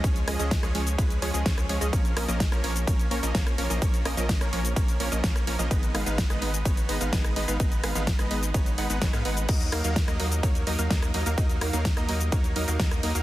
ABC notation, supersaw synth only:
X:1
M:4/4
L:1/16
Q:1/4=127
K:Ebm
V:1 name="Supersaw synth"
[F,A,DAd]2 [F,A,DAe] [F,A,DAe]2 [F,A,DAd] [F,A,DAd]2 [F,A,DAc]2 [F,A,DAd] [F,A,DAe] [F,A,DAd]2 [F,A,DAd] [F,A,DAe] | [F,B,DBd]2 [F,B,DBe] [F,B,DBe]2 [F,B,DBd] [F,B,DBd]2 [F,B,DBd]2 [F,B,DBd] [F,B,DBe] [F,B,DBd]2 [F,B,DBd] [F,B,DBe] | [F,B,DBd]2 [F,B,DBe] [F,B,DBe]2 [F,B,DBd] [F,B,DBd]2 [F,B,DBd]2 [F,B,DBd] [F,B,DBe] D2 [F,B,DBd] [F,B,DBe] | [A,CEce]2 [A,CEcf] [A,CEcf]2 [A,CEce] [A,CEce]2 [A,CEcd]2 [A,CEce] [A,CEcf] [A,CEce]2 [A,CEce] [A,CEcf] |
[A,CEce]2 [A,CEcf] [A,CEcf]2 [A,CEce] [A,CEce]2 [A,CEcd]2 [A,CEcg] [A,CEcg] [A,CEcd] [A,CEcf] [A,CEcg]2 | [G,B,EBe]2 [G,B,EBf] [G,B,EBf]2 [G,B,EBe] [G,B,EBe]2 [G,B,EBd]2 [G,B,EBe] [G,B,EBf] [G,B,EBe]2 [G,B,EBe] [G,B,EBf] | [G,B,EBe]2 [G,B,EBf] [G,B,EBf]2 [G,B,EBe] [G,B,EBe]2 [G,B,EBd]2 [G,B,EBe] [G,B,EBf] [G,B,EBe]2 [G,B,EBe] [G,B,EBf] |]